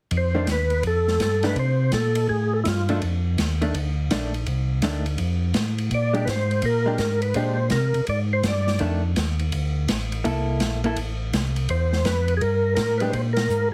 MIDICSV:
0, 0, Header, 1, 5, 480
1, 0, Start_track
1, 0, Tempo, 361446
1, 162, Time_signature, 4, 2, 24, 8
1, 18243, End_track
2, 0, Start_track
2, 0, Title_t, "Tonewheel organ"
2, 0, Program_c, 0, 16
2, 229, Note_on_c, 0, 72, 85
2, 644, Note_off_c, 0, 72, 0
2, 681, Note_on_c, 0, 71, 89
2, 1110, Note_off_c, 0, 71, 0
2, 1156, Note_on_c, 0, 69, 85
2, 1608, Note_off_c, 0, 69, 0
2, 1624, Note_on_c, 0, 69, 80
2, 1932, Note_off_c, 0, 69, 0
2, 1942, Note_on_c, 0, 71, 85
2, 2087, Note_off_c, 0, 71, 0
2, 2114, Note_on_c, 0, 72, 79
2, 2546, Note_off_c, 0, 72, 0
2, 2572, Note_on_c, 0, 69, 80
2, 3015, Note_off_c, 0, 69, 0
2, 3044, Note_on_c, 0, 68, 87
2, 3363, Note_off_c, 0, 68, 0
2, 3365, Note_on_c, 0, 69, 80
2, 3457, Note_off_c, 0, 69, 0
2, 3503, Note_on_c, 0, 64, 42
2, 3546, Note_off_c, 0, 64, 0
2, 3560, Note_on_c, 0, 65, 62
2, 3990, Note_off_c, 0, 65, 0
2, 7893, Note_on_c, 0, 74, 85
2, 8295, Note_off_c, 0, 74, 0
2, 8302, Note_on_c, 0, 71, 62
2, 8346, Note_off_c, 0, 71, 0
2, 8366, Note_on_c, 0, 72, 94
2, 8835, Note_on_c, 0, 70, 83
2, 8840, Note_off_c, 0, 72, 0
2, 9269, Note_off_c, 0, 70, 0
2, 9285, Note_on_c, 0, 70, 72
2, 9573, Note_off_c, 0, 70, 0
2, 9595, Note_on_c, 0, 71, 73
2, 9754, Note_off_c, 0, 71, 0
2, 9759, Note_on_c, 0, 72, 75
2, 10209, Note_off_c, 0, 72, 0
2, 10244, Note_on_c, 0, 70, 79
2, 10692, Note_off_c, 0, 70, 0
2, 10749, Note_on_c, 0, 74, 92
2, 10883, Note_off_c, 0, 74, 0
2, 11063, Note_on_c, 0, 72, 76
2, 11225, Note_off_c, 0, 72, 0
2, 11256, Note_on_c, 0, 74, 76
2, 11680, Note_off_c, 0, 74, 0
2, 15541, Note_on_c, 0, 72, 71
2, 16004, Note_on_c, 0, 71, 80
2, 16028, Note_off_c, 0, 72, 0
2, 16390, Note_off_c, 0, 71, 0
2, 16426, Note_on_c, 0, 68, 64
2, 16482, Note_on_c, 0, 70, 86
2, 16490, Note_off_c, 0, 68, 0
2, 16919, Note_off_c, 0, 70, 0
2, 16935, Note_on_c, 0, 70, 78
2, 17233, Note_on_c, 0, 71, 85
2, 17269, Note_off_c, 0, 70, 0
2, 17397, Note_on_c, 0, 72, 78
2, 17430, Note_off_c, 0, 71, 0
2, 17547, Note_off_c, 0, 72, 0
2, 17703, Note_on_c, 0, 70, 99
2, 18173, Note_off_c, 0, 70, 0
2, 18243, End_track
3, 0, Start_track
3, 0, Title_t, "Hollow-body jazz guitar"
3, 0, Program_c, 1, 26
3, 460, Note_on_c, 1, 51, 60
3, 465, Note_on_c, 1, 57, 60
3, 478, Note_on_c, 1, 62, 72
3, 619, Note_off_c, 1, 51, 0
3, 622, Note_off_c, 1, 57, 0
3, 628, Note_off_c, 1, 62, 0
3, 1907, Note_on_c, 1, 51, 60
3, 1914, Note_on_c, 1, 62, 70
3, 1920, Note_on_c, 1, 57, 60
3, 2063, Note_off_c, 1, 51, 0
3, 2067, Note_off_c, 1, 62, 0
3, 2070, Note_off_c, 1, 57, 0
3, 3837, Note_on_c, 1, 51, 55
3, 3849, Note_on_c, 1, 57, 62
3, 3851, Note_on_c, 1, 62, 64
3, 3989, Note_off_c, 1, 51, 0
3, 3995, Note_off_c, 1, 57, 0
3, 3996, Note_off_c, 1, 62, 0
3, 4801, Note_on_c, 1, 51, 51
3, 4809, Note_on_c, 1, 57, 62
3, 4819, Note_on_c, 1, 62, 59
3, 4951, Note_off_c, 1, 51, 0
3, 4955, Note_off_c, 1, 57, 0
3, 4960, Note_off_c, 1, 62, 0
3, 5456, Note_on_c, 1, 51, 58
3, 5468, Note_on_c, 1, 62, 66
3, 5474, Note_on_c, 1, 57, 61
3, 5729, Note_off_c, 1, 51, 0
3, 5735, Note_off_c, 1, 62, 0
3, 5738, Note_off_c, 1, 57, 0
3, 6417, Note_on_c, 1, 51, 49
3, 6427, Note_on_c, 1, 57, 52
3, 6431, Note_on_c, 1, 62, 53
3, 6690, Note_off_c, 1, 51, 0
3, 6695, Note_off_c, 1, 57, 0
3, 6696, Note_off_c, 1, 62, 0
3, 8146, Note_on_c, 1, 56, 65
3, 8158, Note_on_c, 1, 62, 66
3, 8168, Note_on_c, 1, 67, 67
3, 8304, Note_off_c, 1, 56, 0
3, 8310, Note_off_c, 1, 62, 0
3, 8315, Note_off_c, 1, 67, 0
3, 9110, Note_on_c, 1, 56, 60
3, 9127, Note_on_c, 1, 62, 61
3, 9130, Note_on_c, 1, 67, 65
3, 9266, Note_off_c, 1, 56, 0
3, 9274, Note_off_c, 1, 62, 0
3, 9276, Note_off_c, 1, 67, 0
3, 9774, Note_on_c, 1, 56, 49
3, 9778, Note_on_c, 1, 62, 47
3, 9786, Note_on_c, 1, 67, 50
3, 10049, Note_off_c, 1, 56, 0
3, 10051, Note_off_c, 1, 62, 0
3, 10055, Note_off_c, 1, 67, 0
3, 11686, Note_on_c, 1, 51, 45
3, 11694, Note_on_c, 1, 57, 48
3, 11700, Note_on_c, 1, 62, 53
3, 11965, Note_off_c, 1, 51, 0
3, 11969, Note_off_c, 1, 57, 0
3, 11972, Note_off_c, 1, 62, 0
3, 13602, Note_on_c, 1, 58, 50
3, 13605, Note_on_c, 1, 64, 54
3, 13622, Note_on_c, 1, 69, 59
3, 14333, Note_off_c, 1, 58, 0
3, 14334, Note_off_c, 1, 64, 0
3, 14343, Note_off_c, 1, 69, 0
3, 14398, Note_on_c, 1, 58, 60
3, 14415, Note_on_c, 1, 64, 65
3, 14426, Note_on_c, 1, 69, 69
3, 14551, Note_off_c, 1, 58, 0
3, 14559, Note_off_c, 1, 64, 0
3, 14565, Note_off_c, 1, 69, 0
3, 17279, Note_on_c, 1, 56, 64
3, 17292, Note_on_c, 1, 62, 60
3, 17292, Note_on_c, 1, 67, 65
3, 17431, Note_off_c, 1, 56, 0
3, 17437, Note_off_c, 1, 62, 0
3, 17437, Note_off_c, 1, 67, 0
3, 18243, End_track
4, 0, Start_track
4, 0, Title_t, "Tonewheel organ"
4, 0, Program_c, 2, 16
4, 145, Note_on_c, 2, 41, 73
4, 619, Note_off_c, 2, 41, 0
4, 626, Note_on_c, 2, 39, 86
4, 1100, Note_off_c, 2, 39, 0
4, 1107, Note_on_c, 2, 41, 75
4, 1581, Note_off_c, 2, 41, 0
4, 1587, Note_on_c, 2, 43, 78
4, 2061, Note_off_c, 2, 43, 0
4, 2063, Note_on_c, 2, 48, 72
4, 2539, Note_off_c, 2, 48, 0
4, 2557, Note_on_c, 2, 46, 82
4, 3026, Note_off_c, 2, 46, 0
4, 3038, Note_on_c, 2, 45, 84
4, 3507, Note_off_c, 2, 45, 0
4, 3518, Note_on_c, 2, 43, 81
4, 3987, Note_off_c, 2, 43, 0
4, 4006, Note_on_c, 2, 41, 71
4, 4471, Note_off_c, 2, 41, 0
4, 4488, Note_on_c, 2, 39, 91
4, 4952, Note_off_c, 2, 39, 0
4, 4971, Note_on_c, 2, 38, 81
4, 5434, Note_off_c, 2, 38, 0
4, 5451, Note_on_c, 2, 34, 78
4, 5914, Note_off_c, 2, 34, 0
4, 5931, Note_on_c, 2, 36, 82
4, 6394, Note_off_c, 2, 36, 0
4, 6407, Note_on_c, 2, 38, 89
4, 6872, Note_off_c, 2, 38, 0
4, 6881, Note_on_c, 2, 41, 75
4, 7348, Note_off_c, 2, 41, 0
4, 7365, Note_on_c, 2, 45, 82
4, 7831, Note_off_c, 2, 45, 0
4, 7846, Note_on_c, 2, 46, 72
4, 8311, Note_off_c, 2, 46, 0
4, 8320, Note_on_c, 2, 44, 90
4, 8789, Note_off_c, 2, 44, 0
4, 8804, Note_on_c, 2, 46, 76
4, 9270, Note_off_c, 2, 46, 0
4, 9276, Note_on_c, 2, 44, 80
4, 9746, Note_off_c, 2, 44, 0
4, 9756, Note_on_c, 2, 46, 79
4, 10227, Note_off_c, 2, 46, 0
4, 10240, Note_on_c, 2, 48, 83
4, 10531, Note_off_c, 2, 48, 0
4, 10552, Note_on_c, 2, 48, 36
4, 10638, Note_off_c, 2, 48, 0
4, 10723, Note_on_c, 2, 44, 76
4, 11191, Note_off_c, 2, 44, 0
4, 11200, Note_on_c, 2, 43, 78
4, 11669, Note_off_c, 2, 43, 0
4, 11687, Note_on_c, 2, 41, 73
4, 12153, Note_off_c, 2, 41, 0
4, 12170, Note_on_c, 2, 39, 91
4, 12634, Note_off_c, 2, 39, 0
4, 12648, Note_on_c, 2, 38, 74
4, 13113, Note_off_c, 2, 38, 0
4, 13130, Note_on_c, 2, 33, 85
4, 13595, Note_off_c, 2, 33, 0
4, 13614, Note_on_c, 2, 36, 74
4, 14077, Note_off_c, 2, 36, 0
4, 14083, Note_on_c, 2, 34, 92
4, 14551, Note_off_c, 2, 34, 0
4, 14564, Note_on_c, 2, 33, 77
4, 15031, Note_off_c, 2, 33, 0
4, 15046, Note_on_c, 2, 36, 80
4, 15512, Note_off_c, 2, 36, 0
4, 15527, Note_on_c, 2, 40, 75
4, 15993, Note_off_c, 2, 40, 0
4, 16002, Note_on_c, 2, 41, 85
4, 16470, Note_off_c, 2, 41, 0
4, 16482, Note_on_c, 2, 43, 80
4, 16949, Note_off_c, 2, 43, 0
4, 16961, Note_on_c, 2, 45, 81
4, 17429, Note_off_c, 2, 45, 0
4, 17440, Note_on_c, 2, 46, 74
4, 17908, Note_off_c, 2, 46, 0
4, 17924, Note_on_c, 2, 44, 88
4, 18212, Note_off_c, 2, 44, 0
4, 18243, End_track
5, 0, Start_track
5, 0, Title_t, "Drums"
5, 146, Note_on_c, 9, 51, 52
5, 149, Note_on_c, 9, 36, 15
5, 278, Note_off_c, 9, 51, 0
5, 281, Note_off_c, 9, 36, 0
5, 625, Note_on_c, 9, 44, 49
5, 625, Note_on_c, 9, 51, 60
5, 628, Note_on_c, 9, 36, 20
5, 631, Note_on_c, 9, 38, 61
5, 758, Note_off_c, 9, 44, 0
5, 758, Note_off_c, 9, 51, 0
5, 761, Note_off_c, 9, 36, 0
5, 764, Note_off_c, 9, 38, 0
5, 931, Note_on_c, 9, 51, 40
5, 1064, Note_off_c, 9, 51, 0
5, 1104, Note_on_c, 9, 51, 55
5, 1107, Note_on_c, 9, 36, 21
5, 1237, Note_off_c, 9, 51, 0
5, 1240, Note_off_c, 9, 36, 0
5, 1432, Note_on_c, 9, 38, 39
5, 1565, Note_off_c, 9, 38, 0
5, 1591, Note_on_c, 9, 36, 23
5, 1591, Note_on_c, 9, 44, 50
5, 1591, Note_on_c, 9, 51, 60
5, 1598, Note_on_c, 9, 38, 57
5, 1724, Note_off_c, 9, 36, 0
5, 1724, Note_off_c, 9, 44, 0
5, 1724, Note_off_c, 9, 51, 0
5, 1731, Note_off_c, 9, 38, 0
5, 1895, Note_on_c, 9, 51, 43
5, 1902, Note_on_c, 9, 38, 38
5, 2028, Note_off_c, 9, 51, 0
5, 2035, Note_off_c, 9, 38, 0
5, 2071, Note_on_c, 9, 51, 47
5, 2072, Note_on_c, 9, 36, 23
5, 2204, Note_off_c, 9, 51, 0
5, 2205, Note_off_c, 9, 36, 0
5, 2546, Note_on_c, 9, 44, 48
5, 2546, Note_on_c, 9, 51, 59
5, 2553, Note_on_c, 9, 38, 56
5, 2554, Note_on_c, 9, 36, 24
5, 2679, Note_off_c, 9, 44, 0
5, 2679, Note_off_c, 9, 51, 0
5, 2686, Note_off_c, 9, 38, 0
5, 2687, Note_off_c, 9, 36, 0
5, 2858, Note_on_c, 9, 51, 65
5, 2991, Note_off_c, 9, 51, 0
5, 3038, Note_on_c, 9, 36, 18
5, 3171, Note_off_c, 9, 36, 0
5, 3522, Note_on_c, 9, 44, 56
5, 3522, Note_on_c, 9, 51, 61
5, 3523, Note_on_c, 9, 36, 25
5, 3529, Note_on_c, 9, 38, 64
5, 3655, Note_off_c, 9, 36, 0
5, 3655, Note_off_c, 9, 44, 0
5, 3655, Note_off_c, 9, 51, 0
5, 3662, Note_off_c, 9, 38, 0
5, 3833, Note_on_c, 9, 51, 43
5, 3966, Note_off_c, 9, 51, 0
5, 4006, Note_on_c, 9, 51, 51
5, 4008, Note_on_c, 9, 36, 17
5, 4138, Note_off_c, 9, 51, 0
5, 4141, Note_off_c, 9, 36, 0
5, 4490, Note_on_c, 9, 44, 57
5, 4490, Note_on_c, 9, 51, 58
5, 4492, Note_on_c, 9, 36, 25
5, 4497, Note_on_c, 9, 38, 61
5, 4623, Note_off_c, 9, 44, 0
5, 4623, Note_off_c, 9, 51, 0
5, 4624, Note_off_c, 9, 36, 0
5, 4630, Note_off_c, 9, 38, 0
5, 4803, Note_on_c, 9, 51, 39
5, 4936, Note_off_c, 9, 51, 0
5, 4973, Note_on_c, 9, 51, 58
5, 4975, Note_on_c, 9, 36, 22
5, 5106, Note_off_c, 9, 51, 0
5, 5108, Note_off_c, 9, 36, 0
5, 5452, Note_on_c, 9, 36, 24
5, 5452, Note_on_c, 9, 44, 54
5, 5452, Note_on_c, 9, 51, 63
5, 5458, Note_on_c, 9, 38, 59
5, 5585, Note_off_c, 9, 36, 0
5, 5585, Note_off_c, 9, 44, 0
5, 5585, Note_off_c, 9, 51, 0
5, 5591, Note_off_c, 9, 38, 0
5, 5765, Note_on_c, 9, 51, 41
5, 5898, Note_off_c, 9, 51, 0
5, 5928, Note_on_c, 9, 51, 53
5, 5933, Note_on_c, 9, 36, 24
5, 6061, Note_off_c, 9, 51, 0
5, 6065, Note_off_c, 9, 36, 0
5, 6400, Note_on_c, 9, 44, 47
5, 6400, Note_on_c, 9, 51, 63
5, 6407, Note_on_c, 9, 38, 63
5, 6410, Note_on_c, 9, 36, 21
5, 6533, Note_off_c, 9, 44, 0
5, 6533, Note_off_c, 9, 51, 0
5, 6539, Note_off_c, 9, 38, 0
5, 6543, Note_off_c, 9, 36, 0
5, 6717, Note_on_c, 9, 51, 44
5, 6850, Note_off_c, 9, 51, 0
5, 6878, Note_on_c, 9, 51, 57
5, 6888, Note_on_c, 9, 36, 23
5, 7011, Note_off_c, 9, 51, 0
5, 7021, Note_off_c, 9, 36, 0
5, 7356, Note_on_c, 9, 44, 47
5, 7356, Note_on_c, 9, 51, 58
5, 7363, Note_on_c, 9, 38, 68
5, 7367, Note_on_c, 9, 36, 20
5, 7489, Note_off_c, 9, 44, 0
5, 7489, Note_off_c, 9, 51, 0
5, 7496, Note_off_c, 9, 38, 0
5, 7500, Note_off_c, 9, 36, 0
5, 7680, Note_on_c, 9, 51, 44
5, 7813, Note_off_c, 9, 51, 0
5, 7846, Note_on_c, 9, 51, 54
5, 7849, Note_on_c, 9, 36, 24
5, 7979, Note_off_c, 9, 51, 0
5, 7982, Note_off_c, 9, 36, 0
5, 8160, Note_on_c, 9, 51, 42
5, 8292, Note_off_c, 9, 51, 0
5, 8327, Note_on_c, 9, 36, 24
5, 8332, Note_on_c, 9, 44, 44
5, 8332, Note_on_c, 9, 51, 61
5, 8339, Note_on_c, 9, 38, 62
5, 8460, Note_off_c, 9, 36, 0
5, 8465, Note_off_c, 9, 44, 0
5, 8465, Note_off_c, 9, 51, 0
5, 8472, Note_off_c, 9, 38, 0
5, 8643, Note_on_c, 9, 51, 43
5, 8776, Note_off_c, 9, 51, 0
5, 8790, Note_on_c, 9, 51, 63
5, 8802, Note_on_c, 9, 36, 22
5, 8923, Note_off_c, 9, 51, 0
5, 8934, Note_off_c, 9, 36, 0
5, 9271, Note_on_c, 9, 44, 51
5, 9271, Note_on_c, 9, 51, 62
5, 9278, Note_on_c, 9, 38, 64
5, 9281, Note_on_c, 9, 36, 18
5, 9404, Note_off_c, 9, 44, 0
5, 9404, Note_off_c, 9, 51, 0
5, 9411, Note_off_c, 9, 38, 0
5, 9414, Note_off_c, 9, 36, 0
5, 9584, Note_on_c, 9, 51, 48
5, 9717, Note_off_c, 9, 51, 0
5, 9750, Note_on_c, 9, 51, 62
5, 9759, Note_on_c, 9, 36, 17
5, 9882, Note_off_c, 9, 51, 0
5, 9892, Note_off_c, 9, 36, 0
5, 10223, Note_on_c, 9, 44, 52
5, 10223, Note_on_c, 9, 51, 66
5, 10229, Note_on_c, 9, 38, 62
5, 10240, Note_on_c, 9, 36, 19
5, 10355, Note_off_c, 9, 44, 0
5, 10355, Note_off_c, 9, 51, 0
5, 10362, Note_off_c, 9, 38, 0
5, 10372, Note_off_c, 9, 36, 0
5, 10546, Note_on_c, 9, 51, 43
5, 10679, Note_off_c, 9, 51, 0
5, 10713, Note_on_c, 9, 51, 55
5, 10724, Note_on_c, 9, 36, 24
5, 10846, Note_off_c, 9, 51, 0
5, 10857, Note_off_c, 9, 36, 0
5, 11200, Note_on_c, 9, 44, 64
5, 11200, Note_on_c, 9, 51, 62
5, 11206, Note_on_c, 9, 38, 64
5, 11208, Note_on_c, 9, 36, 18
5, 11332, Note_off_c, 9, 44, 0
5, 11332, Note_off_c, 9, 51, 0
5, 11339, Note_off_c, 9, 38, 0
5, 11341, Note_off_c, 9, 36, 0
5, 11515, Note_on_c, 9, 38, 42
5, 11647, Note_off_c, 9, 38, 0
5, 11671, Note_on_c, 9, 51, 53
5, 11689, Note_on_c, 9, 36, 19
5, 11804, Note_off_c, 9, 51, 0
5, 11822, Note_off_c, 9, 36, 0
5, 12166, Note_on_c, 9, 44, 53
5, 12166, Note_on_c, 9, 51, 64
5, 12173, Note_on_c, 9, 36, 19
5, 12173, Note_on_c, 9, 38, 62
5, 12299, Note_off_c, 9, 44, 0
5, 12299, Note_off_c, 9, 51, 0
5, 12306, Note_off_c, 9, 36, 0
5, 12306, Note_off_c, 9, 38, 0
5, 12475, Note_on_c, 9, 51, 42
5, 12608, Note_off_c, 9, 51, 0
5, 12644, Note_on_c, 9, 51, 64
5, 12657, Note_on_c, 9, 36, 25
5, 12777, Note_off_c, 9, 51, 0
5, 12789, Note_off_c, 9, 36, 0
5, 13125, Note_on_c, 9, 44, 62
5, 13125, Note_on_c, 9, 51, 69
5, 13132, Note_on_c, 9, 38, 64
5, 13135, Note_on_c, 9, 36, 22
5, 13258, Note_off_c, 9, 44, 0
5, 13258, Note_off_c, 9, 51, 0
5, 13265, Note_off_c, 9, 38, 0
5, 13268, Note_off_c, 9, 36, 0
5, 13440, Note_on_c, 9, 51, 46
5, 13573, Note_off_c, 9, 51, 0
5, 13610, Note_on_c, 9, 51, 53
5, 13617, Note_on_c, 9, 36, 21
5, 13743, Note_off_c, 9, 51, 0
5, 13749, Note_off_c, 9, 36, 0
5, 14078, Note_on_c, 9, 44, 57
5, 14078, Note_on_c, 9, 51, 61
5, 14084, Note_on_c, 9, 38, 59
5, 14091, Note_on_c, 9, 36, 23
5, 14210, Note_off_c, 9, 44, 0
5, 14210, Note_off_c, 9, 51, 0
5, 14217, Note_off_c, 9, 38, 0
5, 14223, Note_off_c, 9, 36, 0
5, 14395, Note_on_c, 9, 51, 38
5, 14528, Note_off_c, 9, 51, 0
5, 14560, Note_on_c, 9, 51, 66
5, 14570, Note_on_c, 9, 36, 22
5, 14693, Note_off_c, 9, 51, 0
5, 14703, Note_off_c, 9, 36, 0
5, 15050, Note_on_c, 9, 44, 47
5, 15050, Note_on_c, 9, 51, 65
5, 15051, Note_on_c, 9, 36, 16
5, 15057, Note_on_c, 9, 38, 60
5, 15183, Note_off_c, 9, 44, 0
5, 15183, Note_off_c, 9, 51, 0
5, 15184, Note_off_c, 9, 36, 0
5, 15190, Note_off_c, 9, 38, 0
5, 15353, Note_on_c, 9, 51, 44
5, 15486, Note_off_c, 9, 51, 0
5, 15520, Note_on_c, 9, 51, 53
5, 15527, Note_on_c, 9, 36, 20
5, 15653, Note_off_c, 9, 51, 0
5, 15660, Note_off_c, 9, 36, 0
5, 15838, Note_on_c, 9, 38, 35
5, 15971, Note_off_c, 9, 38, 0
5, 16000, Note_on_c, 9, 44, 48
5, 16000, Note_on_c, 9, 51, 55
5, 16007, Note_on_c, 9, 36, 20
5, 16007, Note_on_c, 9, 38, 61
5, 16133, Note_off_c, 9, 44, 0
5, 16133, Note_off_c, 9, 51, 0
5, 16139, Note_off_c, 9, 36, 0
5, 16140, Note_off_c, 9, 38, 0
5, 16308, Note_on_c, 9, 51, 41
5, 16440, Note_off_c, 9, 51, 0
5, 16483, Note_on_c, 9, 51, 55
5, 16487, Note_on_c, 9, 36, 19
5, 16616, Note_off_c, 9, 51, 0
5, 16620, Note_off_c, 9, 36, 0
5, 16952, Note_on_c, 9, 44, 48
5, 16952, Note_on_c, 9, 51, 68
5, 16958, Note_on_c, 9, 38, 66
5, 16964, Note_on_c, 9, 36, 23
5, 17084, Note_off_c, 9, 44, 0
5, 17084, Note_off_c, 9, 51, 0
5, 17091, Note_off_c, 9, 38, 0
5, 17097, Note_off_c, 9, 36, 0
5, 17266, Note_on_c, 9, 51, 47
5, 17399, Note_off_c, 9, 51, 0
5, 17440, Note_on_c, 9, 51, 53
5, 17444, Note_on_c, 9, 36, 19
5, 17573, Note_off_c, 9, 51, 0
5, 17577, Note_off_c, 9, 36, 0
5, 17748, Note_on_c, 9, 51, 61
5, 17755, Note_on_c, 9, 38, 76
5, 17881, Note_off_c, 9, 51, 0
5, 17888, Note_off_c, 9, 38, 0
5, 17924, Note_on_c, 9, 44, 49
5, 18057, Note_off_c, 9, 44, 0
5, 18243, End_track
0, 0, End_of_file